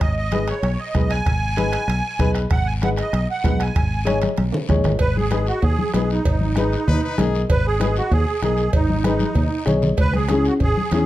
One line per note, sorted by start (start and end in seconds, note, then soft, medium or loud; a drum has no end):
0.00 0.51 G#1 medium
0.00 0.15 D#5 medium
0.00 bombo low medium
0.00 bombo rim medium
0.00 high conga soft
0.00 high timbale medium
0.00 long guiro medium
0.17 0.49 D#5 medium
0.32 0.54 D#4 medium
0.32 0.54 G#4 medium
0.32 0.54 B4 medium
0.32 bombo rim medium
0.32 high conga medium
0.32 high timbale medium
0.32 short guiro medium
0.48 0.81 C#5 medium
0.48 bombo rim medium
0.48 high timbale medium
0.48 short guiro medium
0.62 0.76 B1 medium
0.62 bombo rim medium
0.62 high conga soft
0.62 high timbale medium
0.62 long guiro medium
0.78 1.11 D#5 medium
0.94 1.20 B1 medium
0.94 1.17 D#4 medium
0.94 1.17 G#4 soft
0.94 1.17 B4 medium
0.94 bombo low medium
0.94 bombo rim medium
0.94 high conga medium
0.94 high timbale medium
0.94 low timbale medium
0.94 short guiro medium
1.10 2.31 G#5 loud
1.10 bombo rim medium
1.10 high timbale medium
1.10 short guiro medium
1.25 1.76 G#1 medium
1.25 bombo low medium
1.25 bombo rim medium
1.25 high conga soft
1.25 high timbale medium
1.25 long guiro medium
1.56 1.79 D#4 medium
1.56 1.79 G#4 medium
1.56 1.79 B4 medium
1.56 bombo rim medium
1.56 high conga medium
1.56 high timbale medium
1.56 short guiro medium
1.72 bombo rim medium
1.72 high timbale medium
1.72 short guiro medium
1.87 2.00 B1 medium
1.87 bombo rim medium
1.87 high conga soft
1.87 high timbale medium
1.87 long guiro medium
2.19 2.44 B1 loud
2.19 2.41 D#4 medium
2.19 2.42 G#4 medium
2.19 2.42 B4 medium
2.19 bombo low medium
2.19 bombo rim medium
2.19 high conga medium
2.19 high timbale medium
2.19 short guiro medium
2.34 bombo rim medium
2.34 high timbale medium
2.34 short guiro medium
2.50 3.01 G#1 medium
2.50 2.67 F#5 medium
2.50 bombo low medium
2.50 bombo rim medium
2.50 high conga soft
2.50 high timbale medium
2.50 long guiro medium
2.67 2.74 G#5 medium
2.81 3.04 D#4 medium
2.81 3.04 G#4 medium
2.81 3.04 B4 medium
2.81 2.90 F#5 medium
2.81 bombo rim medium
2.81 high conga medium
2.81 high timbale medium
2.81 short guiro medium
2.96 3.28 D#5 medium
2.96 bombo rim medium
2.96 high timbale medium
2.96 short guiro medium
3.12 3.26 B1 loud
3.12 bombo rim medium
3.12 high conga soft
3.12 high timbale medium
3.12 long guiro medium
3.31 3.62 F#5 medium
3.44 3.69 B1 medium
3.44 3.66 D#4 medium
3.44 3.66 G#4 medium
3.44 3.66 B4 medium
3.44 bombo low medium
3.44 bombo rim medium
3.44 high conga medium
3.44 high timbale medium
3.44 low timbale medium
3.44 short guiro medium
3.60 4.19 G#5 medium
3.60 bombo rim medium
3.60 high timbale medium
3.60 short guiro medium
3.75 4.26 G#1 medium
3.75 bombo low medium
3.75 bombo rim medium
3.75 high conga soft
3.75 high timbale medium
3.75 long guiro medium
4.05 4.28 D#4 medium
4.05 4.28 G#4 medium
4.05 4.28 C#5 loud
4.05 bombo rim medium
4.05 high conga medium
4.05 high timbale medium
4.05 short guiro medium
4.22 bombo rim medium
4.22 high conga medium
4.22 high timbale medium
4.22 short guiro medium
4.37 4.51 B1 medium
4.37 bombo rim medium
4.37 high conga medium
4.37 high timbale medium
4.37 long guiro medium
4.52 low conga loud
4.52 high timbale medium
4.68 4.83 A#1 medium
4.68 4.91 D#4 medium
4.68 4.91 G#4 medium
4.68 4.91 C#5 medium
4.68 bombo low medium
4.68 bombo rim medium
4.68 low conga medium
4.68 low timbale medium
4.68 short guiro medium
4.84 4.99 G#1 medium
4.84 bombo rim medium
4.84 low conga medium
4.84 low timbale medium
4.84 short guiro medium
4.99 5.50 G#1 medium
4.99 5.17 B4 loud
4.99 bombo low medium
4.99 cowbell loud
4.99 high conga soft
4.99 long guiro medium
5.16 5.31 G#4 loud
5.16 high conga medium
5.31 5.53 D#4 medium
5.31 5.53 G#4 medium
5.31 5.47 G#4 medium
5.31 5.53 B4 medium
5.31 bombo rim medium
5.31 cowbell medium
5.31 high conga medium
5.31 short guiro medium
5.47 5.63 F#4 medium
5.47 short guiro medium
5.62 5.75 D#2 loud
5.62 5.92 G#4 loud
5.62 bombo low medium
5.62 cowbell medium
5.62 high conga soft
5.62 long guiro medium
5.79 high conga medium
5.93 6.19 B1 medium
5.93 6.15 D#4 medium
5.93 6.16 G#4 medium
5.93 6.11 G#4 medium
5.93 6.16 B4 medium
5.93 bombo rim medium
5.93 cowbell medium
5.93 high conga medium
5.93 low timbale medium
5.93 short guiro medium
6.10 6.57 D#4 medium
6.10 short guiro medium
6.25 6.75 G#1 medium
6.25 bombo low medium
6.25 cowbell loud
6.25 high conga soft
6.25 long guiro medium
6.41 high conga medium
6.56 6.78 D#4 medium
6.56 7.15 D#4 medium
6.56 6.78 G#4 medium
6.56 6.79 B4 medium
6.56 bombo rim medium
6.56 cowbell medium
6.56 high conga loud
6.56 short guiro medium
6.73 short guiro medium
6.88 7.00 D#2 loud
6.88 7.02 B4 loud
6.88 bombo low medium
6.88 cowbell medium
6.88 high conga soft
6.88 low conga medium
6.88 long guiro medium
7.03 7.22 B4 loud
7.18 7.44 B1 loud
7.18 7.40 D#4 medium
7.18 7.40 G#4 medium
7.18 7.43 G#4 medium
7.18 7.40 A#4 medium
7.18 bombo rim medium
7.18 cowbell medium
7.18 high conga medium
7.18 low conga medium
7.18 low timbale medium
7.18 short guiro medium
7.35 short guiro medium
7.50 7.99 G#1 medium
7.50 7.66 B4 loud
7.50 bombo low medium
7.50 cowbell loud
7.50 high conga soft
7.50 long guiro medium
7.67 7.80 G#4 loud
7.79 8.02 D#4 medium
7.79 8.02 G#4 medium
7.79 7.97 G#4 medium
7.79 8.02 B4 medium
7.79 bombo rim medium
7.79 cowbell medium
7.79 high conga loud
7.79 short guiro medium
7.96 8.13 F#4 medium
7.96 short guiro medium
8.11 8.24 D#2 loud
8.11 8.41 G#4 loud
8.11 bombo low medium
8.11 cowbell medium
8.11 high conga soft
8.11 long guiro medium
8.42 8.67 B1 medium
8.42 8.65 D#4 medium
8.42 8.65 G#4 medium
8.42 8.72 G#4 medium
8.42 8.65 A#4 medium
8.42 bombo rim medium
8.42 cowbell medium
8.42 high conga medium
8.42 short guiro medium
8.57 short guiro medium
8.73 9.23 G#1 medium
8.73 9.05 D#4 medium
8.73 bombo low loud
8.73 cowbell loud
8.73 high conga soft
8.73 long guiro medium
8.90 high conga medium
9.04 9.26 D#4 medium
9.04 9.64 D#4 medium
9.04 9.26 G#4 medium
9.04 9.27 B4 medium
9.04 bombo rim loud
9.04 cowbell medium
9.04 high conga medium
9.04 short guiro medium
9.19 high conga medium
9.19 short guiro medium
9.35 9.48 D#2 loud
9.35 bombo low medium
9.35 cowbell medium
9.35 long guiro medium
9.65 9.92 B1 medium
9.65 9.88 D#4 medium
9.65 9.88 G#4 medium
9.65 9.89 C#5 medium
9.65 bombo rim medium
9.65 cowbell medium
9.65 low conga medium
9.65 short guiro medium
9.82 low conga medium
9.82 short guiro medium
9.97 10.48 C#2 medium
9.97 10.15 B4 loud
9.97 bombo low medium
9.97 cowbell loud
9.97 high conga soft
9.97 long guiro medium
10.13 10.31 G#4 loud
10.13 bombo rim medium
10.13 high conga medium
10.29 10.51 C#4 medium
10.29 10.51 E4 medium
10.29 10.51 G#4 medium
10.29 10.47 G#4 medium
10.29 bombo rim loud
10.29 cowbell medium
10.29 high conga medium
10.29 short guiro medium
10.45 10.54 F#4 medium
10.45 short guiro medium
10.60 10.73 G#1 loud
10.60 10.91 G#4 loud
10.60 bombo low medium
10.60 cowbell medium
10.60 high conga soft
10.60 long guiro medium
10.77 high conga medium
10.91 11.06 E2 medium
10.91 11.06 C#4 medium
10.91 11.06 E4 medium
10.91 11.06 G#4 medium
10.91 bombo rim medium
10.91 cowbell medium
10.91 high conga medium
10.91 short guiro medium